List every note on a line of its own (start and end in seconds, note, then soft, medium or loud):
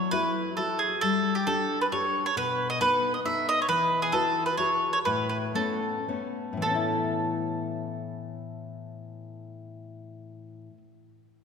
0.00 0.11 F#3 medium
0.00 0.11 C#5 medium
0.11 0.48 E4 medium
0.11 0.49 F#4 soft
0.11 0.49 A4 medium
0.11 0.54 B4 loud
0.57 0.94 E4 soft
0.57 0.94 F#4 soft
0.57 0.78 A4 medium
0.57 0.94 A4 soft
0.79 1.00 G#4 medium
1.01 1.46 G3 medium
1.01 1.33 A4 loud
1.35 1.46 G4 medium
1.47 1.83 D4 soft
1.47 1.83 G4 soft
1.47 1.78 A4 loud
1.47 1.83 A4 medium
1.81 1.86 B4 medium
1.92 2.28 D4 soft
1.92 2.28 G4 soft
1.92 2.28 A4 soft
1.92 2.23 C#5 medium
2.26 2.36 C#5 medium
2.37 2.79 B2 medium
2.37 2.68 B4 loud
2.70 2.80 D#5 medium
2.81 3.16 B3 medium
2.81 3.16 D#4 soft
2.81 3.16 A4 medium
2.81 3.12 B4 loud
3.14 3.19 D#5 medium
3.25 3.60 B3 soft
3.25 3.60 D#4 soft
3.25 3.60 A4 soft
3.25 3.46 E5 medium
3.49 3.61 D#5 loud
3.62 3.68 C#5 medium
3.69 4.12 E3 medium
3.69 4.00 B4 loud
4.02 4.13 G#4 medium
4.12 4.49 E4 soft
4.12 4.50 F#4 soft
4.12 4.46 A4 medium
4.12 4.50 B4 soft
4.46 4.57 B4 medium
4.57 4.96 E4 soft
4.57 4.96 F#4 soft
4.57 4.96 G#4 medium
4.57 4.91 C#5 medium
4.93 4.98 C#5 medium
5.05 5.54 A2 medium
5.05 5.28 B4 medium
5.29 5.36 B4 medium
5.54 5.97 A3 soft
5.54 5.97 B3 soft
5.54 5.98 C#4 medium
5.54 6.04 A4 medium
6.08 6.52 A3 soft
6.08 6.52 B3 soft
6.08 6.53 C#4 soft
6.53 10.68 A2 soft
6.57 10.72 E3 soft
6.57 10.76 A3 soft
6.62 10.77 A4 medium
6.66 10.81 B3 soft
6.66 10.85 C#4 soft
6.75 10.90 E4 medium